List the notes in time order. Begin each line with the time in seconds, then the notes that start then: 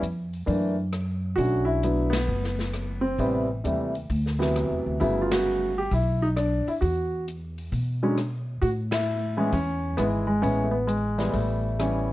0.02 F2, closed hi-hat
0.33 open hi-hat
0.46 F#2 E3 A3 A#3 D4, kick, open hi-hat
0.93 cross-stick, closed hi-hat
1.36 B1 D3 F#3 A3 C#4 F#4, kick, open hi-hat
1.65 E4
1.83 D3 F#3 A3 B3, closed hi-hat
2.10 B3, snare, ride
2.28 F#1
2.44 snare
2.59 snare
2.73 cross-stick, closed hi-hat
3.01 C4
3.18 A1 C3 E3 G3 B3, kick, open hi-hat
3.64 D#2 C3 E3 G3 A3, closed hi-hat
3.95 open hi-hat
4.10 D2, kick, open hi-hat
4.26 snare
4.39 C3 E3 F#3 B3, snare
4.56 cross-stick, closed hi-hat
4.70 E2
4.86 D2
5.00 G1 C#3 F#3 A3 B3 E4, kick, open hi-hat
5.22 F4
5.32 F#4, snare, ride
5.78 G4
5.91 B1 E4, kick, open hi-hat
6.22 D#4
6.36 D4, cross-stick, closed hi-hat
6.67 E4, muted upright bass stroke, open hi-hat
6.81 E2 F#4, kick, open hi-hat
7.28 closed hi-hat
7.58 open hi-hat
7.72 B2, kick, open hi-hat
8.03 D3 F#3 G#3 C#4
8.18 cross-stick, closed hi-hat
8.62 A2 F#4, kick, open hi-hat
8.91 E4, snare, ride
9.37 E3 G#3 B3 C#4
9.52 E2 C#4, kick, open hi-hat
9.97 G#1 E3 G#3 B3 E4, cross-stick, closed hi-hat
10.27 G#3
10.42 A1 E3 G#3 B3 C#4, kick, open hi-hat
10.63 A3
10.71 B3
10.87 G#3, closed hi-hat
11.18 E3 G3 B3 E4, snare, open hi-hat
11.32 A1 A3, kick, open hi-hat
11.79 E3 G3 B3 C#4, cross-stick, closed hi-hat